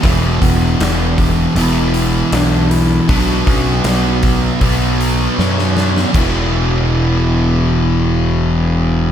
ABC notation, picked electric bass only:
X:1
M:4/4
L:1/8
Q:1/4=79
K:Bdor
V:1 name="Picked electric bass" clef=bass
E,,, E,,, E,,,2 E,,,2 B,,,2 | B,,, B,,, B,,,2 B,,,2 F,,2 | E,,,8 |]